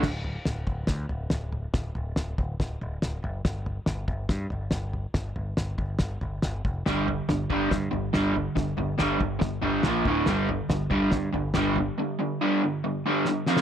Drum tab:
CC |x---------------|----------------|----------------|----------------|
SD |o---o---o---o---|o---o---o---o---|o---o---o---o---|o---o---o---o---|
FT |o-o-o-o-o-o-o-o-|o-o-o-o-o-o-o-o-|o-o-o-o-o-o-o-o-|o-o-o-o-o-o-o-o-|
BD |o-----o-o-------|o-----o-o-------|o-----o-o-------|o-----o-o-----o-|

CC |----------------|----------------|----------------|----------------|
SD |o---o---o---o---|o---o---o---o---|o---o---o---o---|------------o-oo|
FT |o-o-o-o-o-o-o-o-|o-o-o-o-o-o-o-o-|o-o-o-o-o-o-o-o-|----------------|
BD |------o-o-------|o-----o-o-----o-|------o-o-------|----------------|